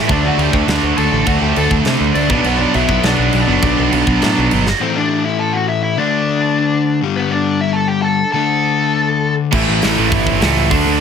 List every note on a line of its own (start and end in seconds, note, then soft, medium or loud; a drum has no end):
0.00 0.10 A3 medium
0.00 0.11 E5 medium
0.08 0.29 D2 loud
0.08 0.55 D3 medium
0.08 0.66 D3 medium
0.08 0.54 F#3 medium
0.08 0.67 A3 loud
0.08 0.52 A3 medium
0.08 0.23 D4 medium
0.08 0.69 D4 medium
0.08 0.51 D4 loud
0.08 kick loud
0.08 crash medium
0.12 0.26 D5 medium
0.25 0.38 F#4 medium
0.25 0.41 F#5 medium
0.38 0.48 D2 loud
0.38 0.53 G4 medium
0.38 0.55 G5 medium
0.38 crash medium
0.51 0.63 D2 medium
0.51 0.94 D3 medium
0.51 0.96 F#3 medium
0.51 0.97 A3 loud
0.51 0.98 D4 loud
0.51 kick medium
0.67 0.78 D2 medium
0.67 1.25 D3 medium
0.67 1.26 A3 medium
0.67 1.28 D4 medium
0.67 snare loud
0.67 crash medium
0.83 0.93 D2 medium
0.95 1.08 D2 medium
0.95 1.24 D3 medium
0.95 1.26 F#3 medium
0.95 1.26 A3 medium
0.95 1.28 D4 loud
0.95 1.11 A4 medium
0.95 1.10 A5 loud
0.95 crash medium
1.12 1.22 A1 medium
1.12 1.26 A4 medium
1.12 1.26 A5 loud
1.25 1.37 D2 medium
1.25 1.70 D3 medium
1.25 1.84 D3 loud
1.25 1.71 F#3 loud
1.25 1.85 A3 loud
1.25 1.70 A3 medium
1.25 1.87 D4 loud
1.25 1.69 D4 loud
1.25 1.41 F#4 medium
1.25 1.41 F#5 medium
1.25 kick loud
1.25 crash medium
1.41 1.52 D2 medium
1.41 1.55 G4 medium
1.41 1.57 G5 medium
1.56 1.67 D2 medium
1.56 1.70 A4 medium
1.56 1.71 A5 medium
1.56 crash medium
1.69 1.81 D2 medium
1.69 2.13 D3 medium
1.69 2.15 F#3 loud
1.69 2.14 A3 loud
1.69 2.17 D4 loud
1.69 kick medium
1.85 1.96 C3 medium
1.85 2.29 D3 medium
1.85 2.29 A3 medium
1.85 2.31 D4 medium
1.85 snare loud
1.85 crash medium
2.00 2.10 D2 medium
2.14 2.32 D2 medium
2.14 2.29 D3 medium
2.14 2.30 F#3 medium
2.14 2.30 A3 medium
2.14 2.30 D4 medium
2.14 2.33 D4 medium
2.14 2.29 D5 loud
2.14 crash medium
2.29 2.40 B1 medium
2.29 2.88 B2 loud
2.29 2.73 B2 loud
2.29 2.88 F#3 loud
2.29 2.75 F#3 medium
2.29 2.87 B3 loud
2.29 2.76 B3 loud
2.29 2.45 D4 medium
2.29 2.77 D4 loud
2.29 2.46 D5 medium
2.29 kick loud
2.44 2.64 B1 medium
2.44 2.59 B3 medium
2.44 2.58 B4 loud
2.44 crash medium
2.58 2.73 D4 medium
2.58 2.74 D5 loud
2.73 2.85 B1 loud
2.73 3.17 B2 medium
2.73 3.18 F#3 medium
2.73 3.18 B3 medium
2.73 3.16 D4 medium
2.73 3.02 E4 medium
2.73 3.05 E5 loud
2.73 crash medium
2.88 2.99 B1 loud
2.88 3.46 B2 medium
2.88 3.47 F#3 medium
2.88 3.47 B3 medium
2.88 kick medium
3.03 3.13 B1 medium
3.03 4.48 D4 medium
3.03 4.48 D5 medium
3.03 snare loud
3.03 crash medium
3.18 3.29 B1 medium
3.18 3.46 B2 medium
3.18 3.47 F#3 medium
3.18 3.47 B3 medium
3.18 3.47 D4 medium
3.33 3.43 B1 medium
3.33 crash medium
3.47 3.58 F#1 medium
3.47 3.90 B2 medium
3.47 4.06 B2 medium
3.47 3.91 F#3 medium
3.47 4.06 F#3 loud
3.47 4.04 B3 loud
3.47 3.92 B3 loud
3.47 3.93 D4 loud
3.62 3.73 B1 medium
3.62 kick loud
3.62 crash medium
3.79 3.88 B1 medium
3.91 4.02 B1 loud
3.91 4.35 B2 medium
3.91 4.36 F#3 medium
3.91 4.34 B3 medium
3.91 4.34 D4 medium
3.91 crash medium
4.06 4.17 B1 medium
4.06 4.66 B2 medium
4.06 4.65 F#3 medium
4.06 4.65 B3 loud
4.06 kick medium
4.22 4.32 A2 medium
4.22 snare loud
4.22 crash medium
4.35 4.47 B1 loud
4.35 4.66 B2 medium
4.35 4.65 F#3 medium
4.35 4.65 B3 medium
4.35 4.64 D4 medium
4.51 4.72 G1 medium
4.51 crash medium
4.67 snare medium
4.80 5.97 A2 loud
4.80 5.98 E3 medium
4.80 5.97 A3 loud
4.80 4.95 C4 medium
4.80 4.96 C5 medium
4.96 5.24 D4 medium
4.96 5.26 D5 loud
5.24 5.39 E4 medium
5.24 5.40 E5 loud
5.39 5.54 A4 medium
5.39 5.55 A5 loud
5.53 5.68 F#4 medium
5.53 5.68 F#5 loud
5.68 5.83 E4 medium
5.68 5.81 E5 loud
5.83 5.98 E4 medium
5.83 5.97 E5 loud
5.97 7.00 D3 loud
5.97 7.01 A3 loud
5.97 6.98 D4 medium
5.97 8.36 D4 loud
5.97 6.98 D5 loud
7.01 8.19 G2 loud
7.01 8.19 D3 loud
7.01 8.20 G3 loud
7.16 7.32 B3 medium
7.16 7.31 B4 medium
7.31 7.60 D4 medium
7.31 7.62 D5 loud
7.61 7.73 E4 medium
7.61 7.74 E5 loud
7.73 7.89 A4 medium
7.73 7.88 A5 loud
7.88 8.03 G4 medium
7.88 8.02 G5 medium
8.02 8.32 A4 medium
8.02 8.31 A5 loud
8.32 9.51 D3 loud
8.32 9.54 A3 loud
8.32 9.53 D4 loud
8.32 9.34 A4 medium
8.32 9.33 A5 medium
9.51 9.67 A1 loud
9.51 9.82 A2 medium
9.51 10.70 A2 loud
9.51 9.81 E3 loud
9.51 10.71 E3 loud
9.51 9.81 A3 medium
9.51 10.70 A3 loud
9.51 9.80 C4 loud
9.51 9.79 E4 loud
9.51 kick loud
9.51 crash loud
9.68 9.82 A1 medium
9.81 9.97 A1 loud
9.81 10.09 A2 medium
9.81 10.09 E3 medium
9.81 10.09 A3 medium
9.81 10.10 C4 medium
9.81 10.11 E4 loud
9.81 snare loud
9.81 open hi-hat medium
9.96 10.11 A1 medium
9.96 10.39 A2 medium
9.96 10.40 E3 loud
9.96 10.40 A3 medium
10.10 10.39 G1 medium
10.10 10.41 A2 loud
10.10 10.40 E3 loud
10.10 10.40 A3 loud
10.10 10.39 C4 loud
10.10 10.38 E4 loud
10.10 kick loud
10.10 open hi-hat medium
10.27 kick medium
10.40 10.70 C#2 medium
10.40 10.70 A2 medium
10.40 10.68 E3 loud
10.40 10.69 A3 medium
10.40 10.70 C4 medium
10.40 10.69 E4 loud
10.40 snare loud
10.40 open hi-hat medium
10.69 10.85 D2 loud
10.69 10.99 D3 medium
10.69 11.00 D3 medium
10.69 11.00 F#3 medium
10.69 10.99 A3 loud
10.69 11.00 A3 medium
10.69 10.99 D4 loud
10.69 11.00 D4 loud
10.69 kick loud
10.69 open hi-hat medium
10.86 11.00 D2 loud